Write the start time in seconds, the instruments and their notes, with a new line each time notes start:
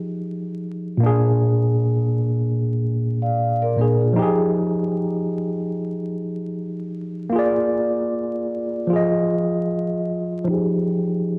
Already playing: tine electric piano F3 D#4 G4 G#4
0.97 tine electric piano A#2 A#3
1.03 tine electric piano D4 G#4
3.22 vibraphone D5 F5
3.62 vibraphone A#4 D5
3.76 tine electric piano A#2 A#3 D4, vibraphone A#4
3.81 tine electric piano G#4
4.01 vibraphone F4 G#4
4.13 tine electric piano F3 D#4
4.19 tine electric piano G4 G#4
7.30 tine electric piano A#3 F4
7.36 tine electric piano G#4 D5
8.87 tine electric piano F3 F4
8.93 tine electric piano G#4 D#5
10.45 tine electric piano F3 D#4
10.51 tine electric piano G4 G#4